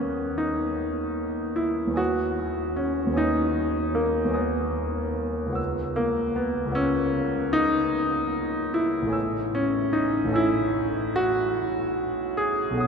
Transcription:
0.00 1.87 D#2 soft
0.00 2.02 A#3 medium
0.00 2.01 B3 medium
0.00 0.41 C#4 medium
0.00 2.02 A#4 soft
0.00 1.91 C#5 soft
0.00 2.01 F#5 soft
0.00 1.96 D#6 soft
0.38 1.57 D#4 medium
1.56 1.97 E4 medium
1.87 3.05 D#2 soft
1.87 3.08 B4 soft
1.87 3.11 C#5 soft
1.94 2.78 F#4 medium
1.94 3.12 G#5 soft
1.94 3.14 D#6 soft
2.76 3.18 C#4 medium
3.06 4.23 D#2 soft
3.06 4.25 B4 soft
3.12 4.28 C#5 soft
3.12 4.30 G#5 soft
3.16 3.97 D#4 medium
3.16 4.32 D#6 soft
3.95 4.36 A#3 medium
4.25 5.48 D#2 soft
4.25 5.47 B4 soft
4.30 5.49 C#5 soft
4.30 5.52 G#5 soft
4.34 5.57 B3 medium
4.34 5.53 D#6 soft
5.46 6.64 C#2 soft
5.46 6.66 B4 soft
5.50 6.68 C#5 soft
5.50 6.70 F#5 soft
5.55 6.71 E6 soft
5.96 6.36 A#3 medium
6.36 6.75 B3 medium
6.65 9.05 C#2 medium
6.65 9.06 B4 soft
6.65 9.07 C#5 soft
6.72 7.54 C#4 medium
6.72 9.08 F#5 soft
6.72 9.10 E6 soft
7.53 8.74 D#4 loud
8.74 9.14 E4 medium
9.02 10.23 A1 medium
9.02 10.25 A4 soft
9.08 10.28 C#5 soft
9.08 10.29 G#5 soft
9.13 10.30 E6 soft
9.55 9.95 C#4 medium
9.93 10.34 D#4 medium
10.24 12.71 A1 medium
10.24 12.71 A4 soft
10.30 12.74 C#5 soft
10.30 12.75 G#5 soft
10.34 11.16 E4 medium
10.34 12.76 E6 soft
11.16 12.39 F#4 loud
12.37 12.80 G#4 medium
12.71 12.87 B1 medium
12.71 12.87 A4 soft
12.75 12.87 C#5 soft
12.75 12.87 F#5 soft
12.80 12.87 D#6 soft

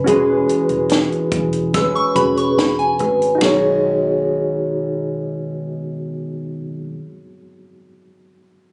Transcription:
0.04 0.41 E1 loud
0.04 1.74 E3 medium
0.04 1.74 G#3 medium
0.04 2.10 C#4 medium
0.04 2.11 F#4 medium
0.04 2.12 G#4 medium
0.04 closed hi-hat medium
0.09 1.74 C#4 medium
0.09 1.75 G#4 medium
0.09 2.13 B4 medium
0.09 1.76 B4 medium
0.49 closed hi-hat medium
0.69 1.03 E1 medium
0.69 closed hi-hat soft
0.89 snare loud
0.89 closed hi-hat medium
1.12 closed hi-hat soft
1.32 1.82 E1 medium
1.32 kick medium
1.32 closed hi-hat medium
1.53 closed hi-hat soft
1.74 3.43 G#3 medium
1.74 3.00 C#4 medium
1.74 3.00 G#4 medium
1.74 2.98 B4 medium
1.74 1.94 E6 medium
1.74 kick medium
1.74 snare soft
1.74 closed hi-hat medium
1.95 2.15 C#6 medium
1.95 closed hi-hat soft
2.15 2.49 E1 medium
2.15 3.41 C#4 soft
2.15 3.37 F#4 soft
2.15 3.41 G#4 soft
2.15 3.42 B4 medium
2.15 2.36 B5 medium
2.15 kick medium
2.15 closed hi-hat medium
2.37 2.57 C#6 medium
2.37 closed hi-hat soft
2.57 3.00 E1 medium
2.57 2.78 B5 medium
2.57 snare loud
2.57 closed hi-hat medium
2.79 3.38 G#5 medium
2.79 closed hi-hat soft
2.99 3.33 G#1 medium
2.99 3.42 C#4 soft
2.99 3.42 G#4 soft
2.99 3.41 B4 medium
2.99 closed hi-hat medium
3.22 closed hi-hat soft
3.35 6.88 B2 medium
3.35 6.54 D#4 medium
3.35 6.57 F#4 medium
3.41 6.61 B1 medium
3.41 6.92 D#3 medium
3.41 6.94 G#3 medium
3.41 6.61 G#4 medium
3.41 snare medium
3.41 ride bell medium
3.45 6.96 D#4 medium
3.45 6.98 F#4 medium
3.45 6.64 C#5 medium

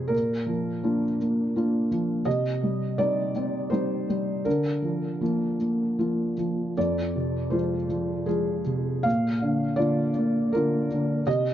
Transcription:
0.00 0.14 C3 soft
0.00 0.15 G#3 soft
0.00 0.15 C4 soft
0.00 0.14 F4 soft
0.00 0.11 G#4 medium
0.00 0.15 C5 medium
0.08 2.20 A#2 soft
0.08 1.88 A#4 medium
0.46 1.05 F3 soft
0.83 1.16 A#3 soft
0.83 1.16 D4 soft
0.83 1.16 F4 soft
1.20 1.54 A#3 soft
1.56 1.87 A#3 soft
1.56 1.88 D4 soft
1.56 1.88 F4 soft
1.91 2.26 F3 soft
2.25 4.41 C3 medium
2.25 2.97 D#5 medium
2.63 2.97 G3 soft
2.98 3.31 G3 soft
2.98 3.31 C4 soft
2.98 3.31 D#4 soft
2.98 3.71 D5 medium
3.36 3.70 C4 soft
3.70 4.05 G3 soft
3.70 4.05 C4 soft
3.70 4.05 D#4 soft
3.70 4.45 C5 medium
4.09 4.46 G3 soft
4.45 6.72 D3 soft
4.45 6.36 A#4 medium
4.82 5.20 F3 soft
5.21 5.55 F3 soft
5.21 5.55 A#3 soft
5.21 5.56 F4 soft
5.60 5.97 A#3 soft
5.99 6.33 F3 soft
5.99 6.33 A#3 soft
5.99 6.34 F4 soft
6.37 6.76 F3 soft
6.77 9.01 F2 soft
6.77 7.53 D5 medium
7.15 7.75 C3 soft
7.50 7.85 F3 soft
7.50 7.85 G#3 soft
7.50 7.86 F4 soft
7.50 8.26 C5 medium
7.89 8.24 F3 soft
8.26 8.61 F3 soft
8.26 8.62 G#3 soft
8.26 8.62 F4 soft
8.26 9.04 G#4 medium
8.65 9.04 C3 soft
9.03 11.21 A#2 soft
9.03 9.77 F5 medium
9.42 9.76 D3 soft
9.76 10.10 D3 soft
9.76 10.10 A#3 soft
9.76 10.11 F4 soft
9.76 10.49 D5 medium
10.17 10.53 A#3 soft
10.53 10.86 D3 soft
10.53 10.86 A#3 soft
10.53 10.87 F4 soft
10.53 11.27 A#4 medium
10.92 11.28 D3 soft
11.27 11.54 C3 medium
11.27 11.54 D#5 medium

